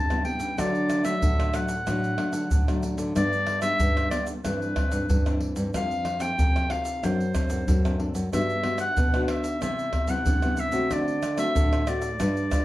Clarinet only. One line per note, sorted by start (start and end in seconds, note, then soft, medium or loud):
0.00 0.24 A5 loud
0.25 0.61 G5 medium
0.59 1.04 D5 medium
1.05 1.56 E5 medium
1.55 2.84 F#5 medium
3.17 3.61 D5 loud
3.62 4.08 E5 loud
4.10 4.25 D5 medium
4.44 5.38 B4 medium
5.76 6.23 F5 loud
6.22 6.72 G5 loud
6.71 7.06 F5 medium
7.04 8.01 C5 medium
8.34 8.78 E5 loud
8.80 9.19 F#5 loud
9.23 9.32 F#5 medium
9.30 9.62 E5 medium
9.63 10.11 E5 medium
10.10 10.61 F#5 loud
10.59 10.94 E5 medium
10.92 11.39 D5 medium
11.39 11.90 E5 medium
11.88 12.65 D5 medium